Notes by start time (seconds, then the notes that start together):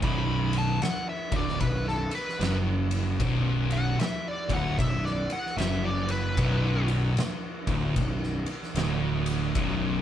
0.02 B0 B1 B5, kick, ride
0.53 ride
0.58 A5
0.82 F#5, muted distorted electric guitar stroke, muted picked electric bass stroke, snare, ride
1.09 E5
1.32 D1 D2, kick, ride
1.36 D5
1.49 snare
1.60 B0 B1 B4, kick, ride
1.87 A4, snare
2.11 B4, ride
2.29 snare
2.39 F#1 F#2, snare, ride
2.91 ride
3.20 B0 B1, kick, ride
3.71 F#5, ride
3.98 E5, muted picked electric bass stroke, muted distorted electric guitar stroke, snare, ride
4.28 D5
4.49 D1 D2, kick, ride
4.53 F#5
4.79 B0 B1 E5, kick, ride
5.05 D5, snare
5.30 F#5, ride
5.46 snare
5.56 F#1 F#2 E5, snare, ride
5.85 D5
6.09 B4, ride
6.37 B0 B1, kick, ride
6.88 ride
7.16 muted picked electric bass stroke, muted distorted electric guitar stroke, snare, ride
7.67 D1 D2, kick, ride
7.96 B0 B1, kick, ride
8.23 snare
8.46 ride
8.63 snare
8.74 D1 D2, snare, ride
9.26 ride
9.55 B0 B1, kick, ride